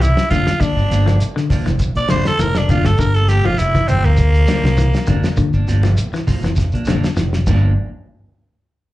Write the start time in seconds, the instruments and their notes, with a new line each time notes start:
Already playing: fingered electric bass C2
0.01 clean electric guitar E3, tenor saxophone E4, closed hi-hat, high conga, shekere
0.17 muted fingered electric bass stroke, snare, closed hi-hat, shekere
0.30 fingered electric bass F1, clean electric guitar D3 F3 A#3 D4, tenor saxophone F4, kick, closed hi-hat, low conga, shekere
0.47 muted fingered electric bass stroke, snare, closed hi-hat, shekere
0.60 fingered electric bass A#1, clean electric guitar D3, tenor saxophone D4, kick, closed hi-hat, shekere
0.77 fingered electric bass G1, clean electric guitar A#3 D4, kick, shekere
0.90 fingered electric bass G1, clean electric guitar F3 A#3 D4, snare, closed hi-hat, shekere
1.06 clean electric guitar F3, snare, closed hi-hat, high conga, shekere
1.20 closed hi-hat, shekere
1.36 clean electric guitar D3, snare, shekere
1.50 clean electric guitar F3 A#3 D4, kick, snare, open hi-hat, high conga, low conga, shekere
1.66 fingered electric bass F1, clean electric guitar E3, snare, closed hi-hat, high conga, shekere
1.79 kick, closed hi-hat, high conga, shekere
1.95 fingered electric bass A#1, clean electric guitar A#3 D4, tenor saxophone D5, closed hi-hat, shekere
2.09 fingered electric bass F1, clean electric guitar D3 F3 A#3 D4, tenor saxophone C5, snare, closed hi-hat, high conga, shekere
2.25 tenor saxophone A4, muted fingered electric bass stroke, snare, closed hi-hat, shekere
2.39 fingered electric bass F1, clean electric guitar E3, tenor saxophone A#4, closed hi-hat, high conga, shekere
2.55 tenor saxophone D4, snare, closed hi-hat, shekere
2.69 clean electric guitar D3 F3 A#3 D4, tenor saxophone F4, kick, closed hi-hat, low conga, shekere
2.84 fingered electric bass G1, tenor saxophone A4, snare, closed hi-hat, shekere
2.98 fingered electric bass G1, clean electric guitar D3, tenor saxophone A#4, kick, closed hi-hat, shekere
3.14 clean electric guitar A#3, tenor saxophone A4, closed hi-hat, shekere
3.28 clean electric guitar F3 A#3, tenor saxophone G4, snare, closed hi-hat, shekere
3.45 fingered electric bass F1, clean electric guitar F3, tenor saxophone F4, high conga, shekere
3.58 fingered electric bass F1, tenor saxophone E4, snare, closed hi-hat, shekere
3.74 clean electric guitar E3, kick, snare, closed hi-hat, shekere
3.88 fingered electric bass G1, clean electric guitar F3 A#3, tenor saxophone C4, muted clean electric guitar stroke, closed hi-hat, high conga, low conga, shekere
4.04 fingered electric bass D2, tenor saxophone A#3, high conga, shekere
4.17 kick, closed hi-hat, shekere
4.34 closed hi-hat, shekere
4.47 clean electric guitar D3 F3 A#3 D4, muted fingered electric bass stroke, snare, closed hi-hat, high conga, shekere
4.63 fingered electric bass C2, snare, shekere
4.77 clean electric guitar E3, closed hi-hat, high conga, shekere
4.93 muted fingered electric bass stroke, snare, closed hi-hat, shekere
5.07 fingered electric bass F1, clean electric guitar D3 F3 A#3 D4, kick, snare, closed hi-hat, low conga, shekere
5.23 muted fingered electric bass stroke, snare, closed hi-hat, shekere
5.37 fingered electric bass A#1, clean electric guitar D3, kick, closed hi-hat, shekere
5.54 fingered electric bass G1, clean electric guitar A#3 D4, kick, shekere
5.67 fingered electric bass G1, clean electric guitar F3 A#3 D4, snare, closed hi-hat, low conga, shekere
5.83 clean electric guitar F3, snare, closed hi-hat, high conga, shekere
5.97 closed hi-hat, shekere
6.13 clean electric guitar E3, snare, high conga, shekere
6.27 clean electric guitar F3 A#3, muted clean electric guitar stroke, kick, snare, open hi-hat, high conga, low conga, shekere
6.42 fingered electric bass F1, clean electric guitar E3, snare, closed hi-hat, high conga, shekere
6.56 kick, snare, closed hi-hat, low conga, shekere
6.72 fingered electric bass A#1, clean electric guitar A#3 D4, closed hi-hat, shekere
6.85 fingered electric bass F1, clean electric guitar D3 F3 A#3 D4, snare, closed hi-hat, high conga, shekere
7.03 muted fingered electric bass stroke, snare, closed hi-hat, shekere
7.17 fingered electric bass F1, clean electric guitar E3, snare, high conga, shekere
7.33 snare, shekere
7.47 fingered electric bass G1, clean electric guitar G2 F3 A#3 D4, kick, crash, low conga, shekere